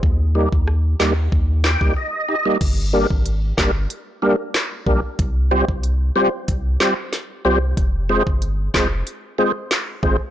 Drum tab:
CC |----------------|x---------------|----------------|----------------|
HH |----------------|x---x---x---x---|x---x---x---x---|x---x---x---x---|
CP |------x---x-----|------x-----x---|----------x-----|------x-----x---|
SD |----r-o---o-----|------o-----o---|----------o-o---|------o-----o---|
BD |o--o----o--o----|o--o--o-------o-|o--o----o-------|o--o--o-------o-|